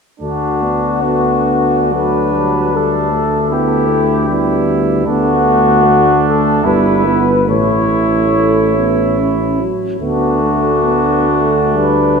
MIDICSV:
0, 0, Header, 1, 6, 480
1, 0, Start_track
1, 0, Key_signature, 2, "major"
1, 0, Tempo, 826446
1, 123, Time_signature, 3, 2, 24, 8
1, 603, Tempo, 887574
1, 1083, Tempo, 807537
1, 1563, Tempo, 782269
1, 3963, Tempo, 846262
1, 5403, Tempo, 820793
1, 6363, Tempo, 924499
1, 6843, Tempo, 843882
1, 7099, End_track
2, 0, Start_track
2, 0, Title_t, "Trumpet section"
2, 0, Program_c, 0, 61
2, 121, Note_on_c, 0, 66, 42
2, 1061, Note_off_c, 0, 66, 0
2, 1084, Note_on_c, 0, 71, 47
2, 1563, Note_off_c, 0, 71, 0
2, 1566, Note_on_c, 0, 69, 39
2, 2033, Note_on_c, 0, 67, 42
2, 2043, Note_off_c, 0, 69, 0
2, 2754, Note_off_c, 0, 67, 0
2, 2989, Note_on_c, 0, 66, 55
2, 3688, Note_off_c, 0, 66, 0
2, 3713, Note_on_c, 0, 69, 51
2, 3962, Note_off_c, 0, 69, 0
2, 3962, Note_on_c, 0, 71, 54
2, 4439, Note_off_c, 0, 71, 0
2, 4442, Note_on_c, 0, 73, 46
2, 5386, Note_off_c, 0, 73, 0
2, 5881, Note_on_c, 0, 66, 47
2, 6822, Note_off_c, 0, 66, 0
2, 6846, Note_on_c, 0, 71, 52
2, 7099, Note_off_c, 0, 71, 0
2, 7099, End_track
3, 0, Start_track
3, 0, Title_t, "Flugelhorn"
3, 0, Program_c, 1, 56
3, 116, Note_on_c, 1, 62, 30
3, 576, Note_off_c, 1, 62, 0
3, 597, Note_on_c, 1, 62, 28
3, 2013, Note_off_c, 1, 62, 0
3, 2038, Note_on_c, 1, 64, 31
3, 2508, Note_off_c, 1, 64, 0
3, 2515, Note_on_c, 1, 64, 39
3, 2986, Note_off_c, 1, 64, 0
3, 2995, Note_on_c, 1, 62, 45
3, 3960, Note_on_c, 1, 64, 39
3, 3969, Note_off_c, 1, 62, 0
3, 4339, Note_off_c, 1, 64, 0
3, 4435, Note_on_c, 1, 64, 36
3, 5670, Note_off_c, 1, 64, 0
3, 5887, Note_on_c, 1, 62, 35
3, 7099, Note_off_c, 1, 62, 0
3, 7099, End_track
4, 0, Start_track
4, 0, Title_t, "Euphonium"
4, 0, Program_c, 2, 58
4, 122, Note_on_c, 2, 57, 32
4, 346, Note_off_c, 2, 57, 0
4, 361, Note_on_c, 2, 59, 30
4, 597, Note_on_c, 2, 57, 30
4, 605, Note_off_c, 2, 59, 0
4, 1079, Note_on_c, 2, 54, 35
4, 1087, Note_off_c, 2, 57, 0
4, 1328, Note_on_c, 2, 55, 31
4, 1337, Note_off_c, 2, 54, 0
4, 1557, Note_off_c, 2, 55, 0
4, 1561, Note_on_c, 2, 57, 34
4, 2499, Note_off_c, 2, 57, 0
4, 2518, Note_on_c, 2, 59, 36
4, 2988, Note_off_c, 2, 59, 0
4, 2992, Note_on_c, 2, 57, 47
4, 3962, Note_on_c, 2, 59, 39
4, 3971, Note_off_c, 2, 57, 0
4, 4440, Note_off_c, 2, 59, 0
4, 4447, Note_on_c, 2, 57, 33
4, 4871, Note_off_c, 2, 57, 0
4, 4928, Note_on_c, 2, 57, 36
4, 5152, Note_off_c, 2, 57, 0
4, 5168, Note_on_c, 2, 59, 34
4, 5405, Note_on_c, 2, 61, 34
4, 5414, Note_off_c, 2, 59, 0
4, 5647, Note_on_c, 2, 54, 29
4, 5656, Note_off_c, 2, 61, 0
4, 5879, Note_off_c, 2, 54, 0
4, 5883, Note_on_c, 2, 57, 36
4, 7099, Note_off_c, 2, 57, 0
4, 7099, End_track
5, 0, Start_track
5, 0, Title_t, "Trombone"
5, 0, Program_c, 3, 57
5, 127, Note_on_c, 3, 57, 30
5, 362, Note_on_c, 3, 62, 34
5, 371, Note_off_c, 3, 57, 0
5, 595, Note_on_c, 3, 59, 37
5, 604, Note_off_c, 3, 62, 0
5, 1084, Note_on_c, 3, 57, 30
5, 1093, Note_off_c, 3, 59, 0
5, 1327, Note_on_c, 3, 54, 33
5, 1336, Note_off_c, 3, 57, 0
5, 1562, Note_on_c, 3, 55, 33
5, 1571, Note_off_c, 3, 54, 0
5, 1794, Note_off_c, 3, 55, 0
5, 1798, Note_on_c, 3, 57, 35
5, 2038, Note_on_c, 3, 59, 41
5, 2048, Note_off_c, 3, 57, 0
5, 2280, Note_on_c, 3, 57, 39
5, 2289, Note_off_c, 3, 59, 0
5, 2523, Note_on_c, 3, 55, 43
5, 2532, Note_off_c, 3, 57, 0
5, 3004, Note_on_c, 3, 59, 48
5, 3013, Note_off_c, 3, 55, 0
5, 3479, Note_on_c, 3, 57, 40
5, 3488, Note_off_c, 3, 59, 0
5, 3959, Note_off_c, 3, 57, 0
5, 3963, Note_on_c, 3, 55, 40
5, 4206, Note_on_c, 3, 59, 40
5, 4214, Note_off_c, 3, 55, 0
5, 4440, Note_on_c, 3, 57, 38
5, 4449, Note_off_c, 3, 59, 0
5, 5645, Note_off_c, 3, 57, 0
5, 5887, Note_on_c, 3, 59, 38
5, 6127, Note_on_c, 3, 57, 32
5, 6136, Note_off_c, 3, 59, 0
5, 6369, Note_on_c, 3, 59, 38
5, 6377, Note_off_c, 3, 57, 0
5, 6605, Note_off_c, 3, 59, 0
5, 6610, Note_on_c, 3, 57, 34
5, 6847, Note_on_c, 3, 55, 36
5, 6855, Note_off_c, 3, 57, 0
5, 7097, Note_off_c, 3, 55, 0
5, 7099, End_track
6, 0, Start_track
6, 0, Title_t, "Tuba"
6, 0, Program_c, 4, 58
6, 125, Note_on_c, 4, 38, 29
6, 2974, Note_off_c, 4, 38, 0
6, 3001, Note_on_c, 4, 38, 42
6, 3941, Note_off_c, 4, 38, 0
6, 3965, Note_on_c, 4, 31, 40
6, 4440, Note_on_c, 4, 33, 37
6, 4448, Note_off_c, 4, 31, 0
6, 5695, Note_off_c, 4, 33, 0
6, 5884, Note_on_c, 4, 38, 34
6, 7099, Note_off_c, 4, 38, 0
6, 7099, End_track
0, 0, End_of_file